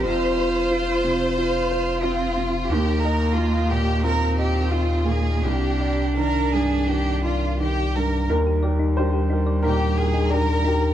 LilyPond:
<<
  \new Staff \with { instrumentName = "Synth pluck" } { \time 4/4 \key ees \major \tempo 4 = 90 r1 | r1 | r1 | ees'16 g'16 d''16 ees'16 g'16 g'16 ees'16 d''16 ees'16 g'16 r16 ees'16 d''16 r16 ees'16 bes'16 | }
  \new Staff \with { instrumentName = "Violin section" } { \time 4/4 \key ees \major c''2. f'4 | g'8 bes'8 f'8 g'8 bes'8 g'8 f'8 aes'8 | g'4 bes'8 aes'8 g'8 f'8 g'8 bes'8 | r2 g'8 aes'8 bes'4 | }
  \new Staff \with { instrumentName = "Upright piano" } { \time 4/4 \key ees \major << { r1 | r1 | r1 | bes'4 c''4 bes'2 | } \\ { f,8 c''8 f'8 c8 f'8 c''8 f'8 c8 | ees,8 ees''8 f'8 bes,8 f'8 ees''8 f'8 bes,8 | c,8 d''8 ees8 g,8 ees8 d''8 ees8 g,8 | ees,8 <g' bes'>8 <d' g' bes'>8 <g' bes'>8 bes,8 <bes' g''>8 <d' g' bes'>8 <g' bes'>8 | } >> }
  \new Staff \with { instrumentName = "Cello" } { \time 4/4 \key ees \major f'2 f'4 c'8 r8 | bes2 c'4. bes8 | d'2.~ d'8 r8 | g1 | }
  \new Staff \with { instrumentName = "Sub bass" } { \clef bass \time 4/4 \key ees \major f,,1 | ees,1 | c,1 | ees,1 | }
>>